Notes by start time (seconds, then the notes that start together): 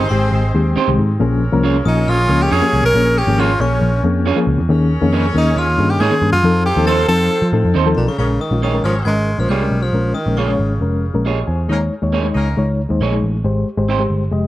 Already playing: C4 G#4 C5
0.09 G#1 D#3 G#3 C4 G4 C6
0.32 G#1
0.54 D#2 D#3 G#3 C4 G4
0.76 C4 D#4 G4 C5, muted picked electric bass stroke
0.87 C2 D#3 G#3 C4 G4
0.98 G#2
1.20 A#1 F3 A#3 C#4 G#4 A#4 C#5
1.52 C2 F3 A#3 C#4 A#4
1.64 C#4 F4 G#4 C#5
1.85 A#1 F3 A#3 C#4 D#4 F4 D#6
2.08 A#1 F4 F6
2.29 C#2 F3 A#3 C#4 G#4
2.42 G4 G6
2.51 F2 C#4 F4 G#4 C#5 G#6
2.62 F3 A#3 C#4 G4
2.73 C2
2.83 B1 A#4 A#6
2.94 A#1 F3 A#3 C#4 G#4
3.18 G4 G6
3.27 G#1 F3 A#3 C#4 G#4
3.38 C#4 F4 G#4 C#5 F6
3.60 A#1 F3 A#3 C#4 G#4 C#6
3.82 A#1
4.04 F2 F3 A#3 C#4 G#4
4.26 C#4 F4 G#4 C#5
4.36 F3 A#3 C#4 G#4
4.47 C#2
4.58 E2
4.69 D#2 D#3 A#3 C#4 G#4 A#4 C#5
5.01 F2 D#3 A#3 C#4 G#4
5.13 A#3 D#4 G#4 C#5
5.34 D#2 D#3 A#3 C#4 D#4 G#4
5.38 D#6
5.56 D#2 F4 F6
5.77 G2 D#3 A#3 C#4 G#4
5.90 G4 G6
6.00 G#2 A#3 D#4 G#4 C#5 G#6
6.11 D#3 A#3 C#4 G#4
6.22 G2
6.32 F#2 F4 F6
6.43 F2 F3 C4 D#4 F4 A4 C5
6.66 G4 G6
6.76 D#2 F3 C4 D#4 A4
6.87 C4 D#4 A4 C5 A6
7.08 F2 F3 C4 D#4 A4 A6
7.42 F3
7.52 A2 F3 C4 D#4 A4
7.64 F2
7.74 D#2 C4 D#4 A4 C5
7.86 F3 C4 D#4 A4
7.96 B1 A#2 A#5
8.08 C#3 C#6
8.18 A#1 C#3 G#3 C#4 G#4 A#4 C#5 C#6
8.41 D#3 D#6
8.51 A#1 G#3 C#4 F4
8.62 D#3 A#3 F4 G#4 C#5 D#6
8.73 G#3 C#4 A#4
8.83 G#1 F3 C#4 G#4 A#4 C#5 F6
9.05 G#1 G#3 C#4 A#4 G#6
9.38 A#1 F3 G#3 C#4 A#4 F6
9.49 C2 G3 A#3 F4 G#4 C#5 G6
9.61 G#3 C#4 A#4
9.71 B1
9.83 F3 F6
9.93 A#1 G#3 C#4 A#4
10.14 D#3 D#6
10.26 A#1 G#3 C#4 A#4
10.37 C#3 A#3 F4 G#4 C#5 C#6
10.47 G#3 C#4 C#5
10.59 G#1
10.80 F1 G#3 C#4 A#4
11.14 A#1 G#3 C#4 A#4
11.25 A#3 F4 G4 G#4 C#5 D#5
11.47 E2 C5 G#5
11.69 D#2 G#3 A#3 C#4 D#4 A#4 C#5
12.02 D#2 G#3 D#4 C#5
12.13 A#3 D#4 G#4 C#5
12.24 G#3 D#4 C#5
12.35 C#2 A#3 C#4 D#4 A#4
12.57 C#2 G#3 D#4 C#5
12.89 D#2 G#3 D#4 C5
13.01 A#1 A#3 D#4 G#4 C#5
13.11 G#3 D#4 G#4
13.23 A1
13.44 G#1 G#3 G4 C5
13.77 G#1 G#3 G4 C5
13.89 C4 D#4 G4 C5
13.99 G#3 G4 C5
14.10 G1
14.31 F1 G#3 G4 D#5